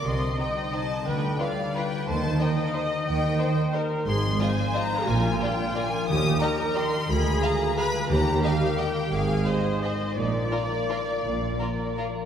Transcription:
X:1
M:3/4
L:1/16
Q:1/4=175
K:Cdor
V:1 name="Violin section"
c'4 g4 a4 | g4 f4 g4 | a4 g3 f e4 | g6 z6 |
[K:Eb] c'4 a4 b4 | a4 g4 a4 | e'4 b4 c'4 | =b4 _b4 =b4 |
b4 f4 g4 | f4 e4 c4 | d12- | d8 z4 |]
V:2 name="Viola section"
e12 | =B4 d4 B4 | c4 e8- | e4 c4 B4 |
[K:Eb] A4 c8 | F12 | G4 B8 | A8 =B4 |
G12 | A4 c4 e4 | d12- | d8- d2 z2 |]
V:3 name="Violin section"
z4 [Ec]4 [Ec]4 | z4 [F=B]4 [FB]4 | z4 [Ec]4 [Ec]4 | z4 [Ec]4 [Ec]4 |
[K:Eb] z4 [Fe]4 [Fe]4 | z4 [Fd]4 [Fd]4 | z4 [Ge]4 [Ge]4 | z4 [Af]4 [Af]4 |
z4 [Ge]4 [Ge]4 | z4 [Ac]4 [Ac]4 | z4 [FB]4 [FB]4 | z4 [FB]4 [FB]4 |]
V:4 name="Harp"
C,2 G,2 E2 G2 c2 E2 | D,2 G,2 F2 G2 =B2 F2 | E,2 E2 c2 e2 G2 c2 | E,2 E2 c2 e2 G2 c2 |
[K:Eb] A,,2 F,2 E2 F2 c2 E2 | B,,2 F,2 D2 F2 B2 D2 | E,2 E2 B2 e2 G2 B2 | D,2 A,2 F2 A2 F2 A,2 |
E,2 E2 B2 e2 G2 B2 | A,,2 A,2 E2 A2 c2 E2 | B,,2 B,2 B2 F2 B2 B,2 | B,,2 F,2 B2 F2 B2 B,2 |]
V:5 name="Cello section" clef=bass
C,4 z8 | D,4 z8 | E,4 z8 | E,4 z8 |
[K:Eb] A,,4 z8 | B,,4 z8 | E,,4 z8 | D,,4 z8 |
E,,4 z8 | A,,4 z8 | B,,4 z8 | B,,4 z8 |]
V:6 name="Double bass section" clef=bass
C,,4 z8 | D,,4 z8 | E,,4 z8 | E,,4 z8 |
[K:Eb] A,,,4 z8 | B,,,4 z8 | E,,4 z8 | D,,4 z8 |
E,,4 z8 | A,,,4 z8 | B,,,4 z8 | B,,,4 z8 |]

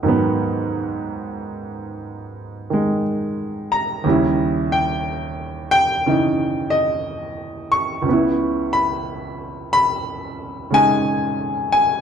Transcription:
X:1
M:4/4
L:1/8
Q:"Swing" 1/4=60
K:G#m
V:1 name="Grand piano"
f6 z a- | a =g2 g2 d2 c'- | c' b2 b2 g2 g |]
V:2 name="Grand piano" clef=bass
[G,,D,F,B,]4- [G,,D,F,B,] [D,G,]3 | [D,,C,=G,E]4 [C,E,D]4 | [C,,C,B,E]4- [C,,C,B,E] [C,G,D]3 |]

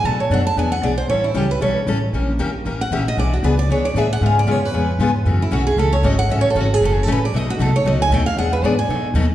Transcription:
X:1
M:4/4
L:1/8
Q:"Swing" 1/4=231
K:Emix
V:1 name="Steel-string acoustic guitar"
a c f a g f d =c | c E =G B c3 z | z4 z f e ^d | d F B d c d e f |
^e d c B4- B | z E F G A c ^d f | (3e c A F G (3A G A B d | ^d F A c d g =g =f |
f B d g3 z2 |]
V:2 name="Steel-string acoustic guitar"
[B,,F,A,DF] z [B,,F,A,DF] z [E,B,DG] z [E,B,DG] z | [E,=G,CEA] z [E,G,CEA] z [E,G,CEA] z [E,G,CEA] z | [E,^A,C=G^A] z [E,A,CGA] z [E,A,CGA] z [E,A,CGA] z | [E,B,DG] z [E,B,DG] z [E,B,DG] z [E,B,DG] z |
[C,G,B,^EG] z [C,G,B,EG] z [C,G,B,EG] z [C,G,B,EG] z | [C,E,A,CF] z [C,E,A,CF] z [C,E,A,CF] z [C,E,A,CF] z | [C,E,A,CF] z [C,E,A,CF] z [C,E,A,CF] z [C,E,A,CF] z | [B,,F,A,^DF] z [B,,F,A,DF] z [B,,F,A,DF] z [B,,F,A,DF] z |
[E,B,DG] z [E,B,DG] z [B,,F,A,^DF] z [B,,F,A,DF] z |]
V:3 name="Upright bass" clef=bass
B,,2 F,,2 E,,2 B,,,2 | A,,,2 C,,2 B,,,2 A,,,2 | ^A,,,2 =G,,,2 =A,,,2 ^A,,,2 | B,,,2 C,,2 D,,2 A,,2 |
G,,2 F,,2 ^E,,2 G,,2 | F,,2 B,,,2 C,,2 G,,,2 | A,,,2 G,,,2 F,,,2 A,,,2 | B,,,2 =C,,2 ^C,,2 ^D,,2 |
E,,2 G,,2 B,,2 ^D,,2 |]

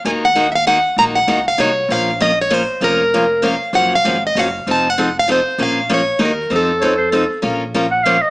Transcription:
X:1
M:3/4
L:1/16
Q:"Swing" 1/4=195
K:Bbm
V:1 name="Steel-string acoustic guitar"
a2 g3- g/2 =e/2 f2 g4 | b2 g4 f2 d4 | f4 e2 d2 c4 | B8 f4 |
g2 f4 e2 f4 | =a2 g4 f2 c4 | f4 d4 B4 | =A8 z4 |
z12 |]
V:2 name="Clarinet"
z12 | z12 | z12 | z12 |
z12 | z12 | z12 | z4 d2 c2 =A4 |
z6 g2 f2 e2 |]
V:3 name="Steel-string acoustic guitar"
[E,B,EGB]2 z2 [E,B,EGB]2 z2 [E,B,EGB]2 z2 | [E,B,EGB]2 z2 [E,B,EGB]2 z2 [E,B,EGB]2 z2 | [F,B,DFB]2 z2 [F,B,DFB]2 z2 [F,B,DFB]2 z2 | [F,B,DFB]2 z2 [F,B,DFB]2 z2 [F,B,DFB]2 z2 |
[D,F,B,DG]2 z2 [D,F,B,DG]2 z2 [D,F,B,DG]2 z2 | [F,CE=A]2 z2 [F,CEA]2 z2 [F,CEA]2 z2 | [F,B,DFB]2 z2 [F,B,DFB]2 z2 [E,B,EGB]2 z2 | [F,CE=A]2 z2 [F,CEA]2 z2 [F,CEA]2 z2 |
[F,B,DFB]2 z2 [F,B,DFB]2 z2 [F,B,DFB]2 z2 |]
V:4 name="Upright bass" clef=bass
E,,12 | B,,,4 D,,4 C,,4 | B,,,12 | F,,,12 |
G,,,4 A,,,4 G,,,4 | F,,,12 | B,,,8 E,,4 | F,,12 |
B,,,12 |]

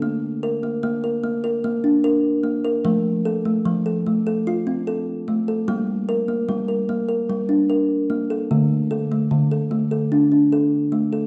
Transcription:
X:1
M:7/8
L:1/16
Q:1/4=74
K:Dm
V:1 name="Kalimba"
B,2 B B,2 B B, B2 D B2 B, B | A,2 A A,2 A A, A2 C A2 A, A | B,2 B B,2 B B, B2 D B2 B, A | A,2 A A,2 A A, A2 D A2 A, A |]
V:2 name="Kalimba" clef=bass
z4 B,4 B,6 | F,4 F,4 F6 | G,4 G,4 G,6 | D,4 D,4 D6 |]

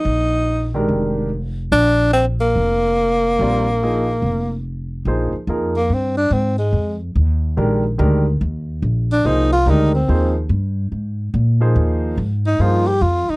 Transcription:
X:1
M:4/4
L:1/8
Q:"Swing" 1/4=144
K:Bbmix
V:1 name="Grand piano"
z3 [E,A,DGB]3 z2 | z8 | [G,CFBd] z [F,B,EAe] z4 z | [F,B,EAc] z [F,B,EAB] z4 z |
z4 [E,A,DGB] z [E,A,DGB] z | z4 [F,B,EAc] z [E,A,DGB] z | [F,B,EAc] z6 [F,B,EAc]- | [F,B,EAc]2 z2 [F,B,EAc] z3 |]
V:2 name="Tenor saxophone"
E3 z4 z | D2 C B,4- B,- | B,6 z2 | z3 B, C D C A,- |
A, z6 z | z3 D E F E C- | C z6 z | z3 E F G F E |]
V:3 name="Upright bass" clef=bass
B,,,4 F,,,4 | B,,,4 F,,,4 | B,,,4 F,,,4 | B,,, z F,,2 G,,2 A,,2 |
F,,2 E,,2 B,,,2 D,,2 | E,,2 B,,,2 C,,2 D,,2 | E,,2 G,,2 A,,2 B,,2 | E,,2 A,,2 G,,2 F,, z |]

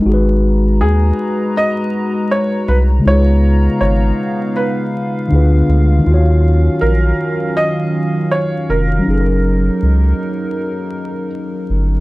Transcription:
X:1
M:4/4
L:1/8
Q:"Swing 16ths" 1/4=80
K:G#dor
V:1 name="Felt piano"
z2 G2 d2 c B | c2 c2 B3 z | z2 A2 d2 c A- | A6 z2 |]
V:2 name="Tine electric piano"
[G,DFGB]8 | [C,G,DEGB]6 [=D,=D=E=F_AB]2 | [D,DEFc]8 | [F,CDG=A^A]8 |]
V:3 name="Analog synth pad"
[G,FBa]8 | [C,B,Dea]6 [=D,_A,B,]2 | [D,F,C]8 | [F,DA]8 |]
V:4 name="Analog synth bass" clef=bass
G,,,2 D,, z4 ^B,,, | C,,2 G,,, z3 =D,, D,, | D,,2 A,,, z4 E,,, | F,,,2 C,, z4 =G,,, |]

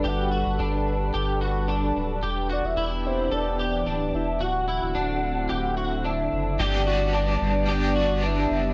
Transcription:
X:1
M:4/4
L:1/16
Q:1/4=110
K:G
V:1 name="Soft synth lead"
f4 z12 | z2 d e3 c2 d6 e2 | f12 e4 | d8 d4 e4 |]
V:2 name="Clean electric guitar"
G2 F2 D4 G2 F2 D4 | G2 F2 E4 A2 G2 D4 | F2 E2 D4 G2 F2 D4 | G2 F2 D4 G2 F2 D4 |]
V:3 name="Analog synth pad"
[G,DAB]16 | [E,B,DG]16 | [D,A,CE]16 | [G,B,D]16 |]
V:4 name="Overdriven electric guitar"
z16 | z16 | z16 | [G,,D,G,B,DG]2 [G,B,DG]6 [G,B,DG]8 |]
V:5 name="Sub bass" clef=bass
G,,,3 G,,, G,,,4 G,,,6 D,,,2 | E,,,3 E,,, E,,,4 E,,,4 D,,,2 E,,,2 | D,,,3 D,,, D,,,4 D,,,6 F,,,2 | G,,,6 G,,,8 F,,,2 |]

